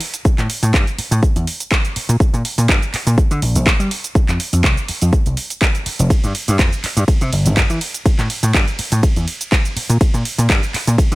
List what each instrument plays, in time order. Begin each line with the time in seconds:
0.00 open hi-hat
0.14 closed hi-hat, cabasa
0.25 muted slap bass stroke, kick, cabasa
0.38 slap bass A2, clap, closed hi-hat, cabasa
0.50 open hi-hat
0.63 slap bass A2, closed hi-hat, cabasa
0.74 slap bass G2, kick, clap, cabasa
0.87 closed hi-hat, cabasa
0.98 muted slap bass stroke, open hi-hat
1.11 slap bass A2, closed hi-hat, cabasa
1.23 kick, cabasa
1.36 slap bass E2, closed hi-hat, cabasa
1.47 open hi-hat
1.60 closed hi-hat, cabasa
1.71 kick, clap, cabasa
1.85 closed hi-hat, cabasa
1.96 muted slap bass stroke, open hi-hat
2.09 slap bass A#2, closed hi-hat, cabasa
2.20 muted slap bass stroke, kick, cabasa
2.33 slap bass A#2, closed hi-hat, cabasa
2.45 open hi-hat
2.58 slap bass A#2, closed hi-hat, cabasa
2.69 slap bass G2, kick, clap, cabasa
2.82 closed hi-hat, cabasa
2.94 muted slap bass stroke, clap, open hi-hat
3.07 slap bass A#2, closed hi-hat, cabasa
3.18 muted slap bass stroke, kick, cabasa
3.31 slap bass D3, closed hi-hat, cabasa
3.42 slap bass A#1, open hi-hat
3.55 slap bass A#1, closed hi-hat, cabasa
3.66 kick, clap, cabasa
3.80 slap bass G3, closed hi-hat, cabasa
3.91 open hi-hat
4.04 closed hi-hat, cabasa
4.15 muted slap bass stroke, kick, cabasa
4.29 slap bass F2, clap, closed hi-hat, cabasa
4.40 open hi-hat
4.53 slap bass F2, closed hi-hat, cabasa
4.64 kick, clap, cabasa
4.77 closed hi-hat, cabasa
4.88 muted slap bass stroke, open hi-hat
5.02 slap bass F2, closed hi-hat, cabasa
5.13 kick, cabasa
5.26 slap bass C2, closed hi-hat, cabasa
5.37 open hi-hat
5.50 closed hi-hat, cabasa
5.61 kick, clap, cabasa
5.75 closed hi-hat, cabasa
5.86 muted slap bass stroke, open hi-hat
5.99 slap bass F1, closed hi-hat, cabasa
6.10 muted slap bass stroke, kick, ride, cabasa
6.24 slap bass G2, closed hi-hat, cabasa
6.35 open hi-hat
6.48 slap bass G2, closed hi-hat, cabasa
6.59 kick, clap, ride, cabasa
6.73 closed hi-hat, cabasa
6.84 muted slap bass stroke, clap, open hi-hat
6.97 slap bass G2, closed hi-hat, cabasa
7.08 muted slap bass stroke, kick, ride, cabasa
7.21 slap bass C3, closed hi-hat, cabasa
7.33 slap bass G1, open hi-hat
7.46 slap bass G1, closed hi-hat, cabasa
7.57 kick, clap, ride, cabasa
7.70 slap bass E3, closed hi-hat, cabasa
7.81 open hi-hat
7.94 closed hi-hat, cabasa
8.05 muted slap bass stroke, kick, ride, cabasa
8.18 slap bass A2, clap, closed hi-hat, cabasa
8.30 open hi-hat
8.43 slap bass A2, closed hi-hat, cabasa
8.54 slap bass G2, kick, clap, ride, cabasa
8.68 closed hi-hat, cabasa
8.79 muted slap bass stroke, open hi-hat
8.92 slap bass A2, closed hi-hat, cabasa
9.03 kick, ride, cabasa
9.16 slap bass E2, closed hi-hat, cabasa
9.28 open hi-hat
9.41 closed hi-hat, cabasa
9.52 kick, clap, ride, cabasa
9.65 closed hi-hat, cabasa
9.76 muted slap bass stroke, open hi-hat
9.89 slap bass A#2, closed hi-hat, cabasa
10.01 muted slap bass stroke, kick, ride, cabasa
10.14 slap bass A#2, closed hi-hat, cabasa
10.25 open hi-hat
10.38 slap bass A#2, closed hi-hat, cabasa
10.49 slap bass G2, kick, clap, ride, cabasa
10.63 closed hi-hat, cabasa
10.74 muted slap bass stroke, clap, open hi-hat
10.87 slap bass A#2, closed hi-hat, cabasa
10.98 kick, ride, cabasa
11.12 slap bass D3, closed hi-hat